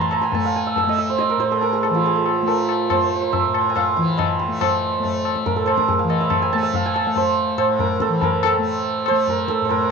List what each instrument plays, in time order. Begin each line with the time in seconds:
Already playing: tanpura A2 E3 A3, santur C5 F5 A5 D#6
0.01 santur C6
0.11 santur A#5, tabla na
0.22 santur G#5, tabla ke
0.32 tanpura A3, santur A5, tabla tin, tabla ge
0.45 santur F5
0.56 santur G#5
0.67 santur E5
0.76 santur F5, tabla tin, tabla ge
0.84 tanpura A3, santur E5
0.89 santur D#5
0.98 santur E5
1.10 santur C5
1.19 santur D#5, tabla te
1.30 santur A#4
1.37 tanpura A2, santur C5, tabla te
1.52 santur A4
1.61 santur A#4, tabla tin
1.73 santur G#4
1.83 santur A4, tabla na
1.90 tanpura E3
1.94 santur F4
2.04 santur G#4, tabla tin
2.16 santur A4
2.26 tabla na
2.42 tanpura A3
2.48 santur A#4, tabla tin
2.69 tabla na
2.90 tanpura A3, santur C5, tabla na, tabla ge
2.97 santur C5
3.03 santur C5
3.09 santur C5
3.16 santur C5
3.22 santur C5
3.33 santur E5, tabla tin, tabla ge
3.46 tanpura A2
3.54 tabla na
3.70 santur G#5
3.76 santur F5, tabla na, tabla ge
3.97 tanpura E3, tabla te
4.18 santur D#5, tabla na, tabla ge
4.40 tabla te
4.48 tanpura A3
4.61 santur C5, tabla na, tabla ge
4.99 tanpura A3
5.03 tabla tin, tabla ge
5.25 tabla na
5.35 tabla ke
5.46 santur A#4, tabla tin, tabla ge
5.52 tanpura A2
5.56 santur A4
5.66 santur C5, tabla na
5.77 santur A#4, tabla ke
5.88 santur G#4, tabla tin, tabla ge
5.99 santur F5
6.04 tanpura E3
6.10 santur D#5, tabla na
6.21 santur E5
6.30 tabla na, tabla ge
6.42 santur G#5
6.53 tanpura A3, santur A5
6.63 santur E5
6.74 santur F5, tabla tin, tabla ge
6.86 santur G#5
6.94 santur A5, tabla na
7.06 tanpura A3, santur F5
7.16 santur C5, tabla tin, tabla ge
7.57 tanpura A2, santur C5, tabla na
7.79 santur A#4, tabla tin, tabla ge
8.00 santur A4, tabla ke
8.09 tanpura E3
8.21 santur A#4, tabla tin, tabla ge
8.43 santur A4, tabla na, tabla ge
8.59 tanpura A3
9.06 santur C5, tabla na
9.11 tanpura A3
9.27 santur A#4, tabla tin, tabla ge
9.48 santur A4, tabla ke
9.61 tanpura A2, santur C5
9.69 santur A#4, tabla tin, tabla ge